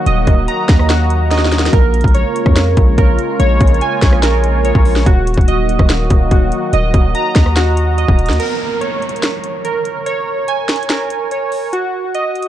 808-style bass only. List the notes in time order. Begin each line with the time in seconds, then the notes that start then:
0.06 D#1
0.27 D#1
0.69 D#2
1.73 A#1
2.04 A#1
2.46 F2
2.77 A#1
2.98 A#1
3.40 A#1
3.61 A#1
4.02 A#1
4.75 A#1
5.06 D#1
5.38 D#1
5.79 D#1
6.10 D#1
6.31 D#1
6.73 D#1
6.94 D#1
7.36 D#2
8.08 D#1
8.29 D#2